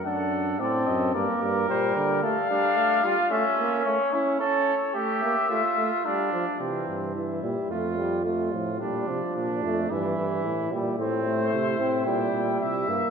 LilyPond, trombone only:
\new Staff \with { instrumentName = "Trombone" } { \time 4/4 \key d \phrygian \tempo 4 = 110 d'4 c'4 bes4 g4 | a8 g8 a8 g8 a8 bes8 a8 cis'8 | cis'8 r8 a8 bes8 a8 a8 g8 f8 | e4 e8 g8 a8 g8 a8 f8 |
g8 f4 a8 e4. g8 | \key g \dorian a8 a4 c'8 g4. bes8 | }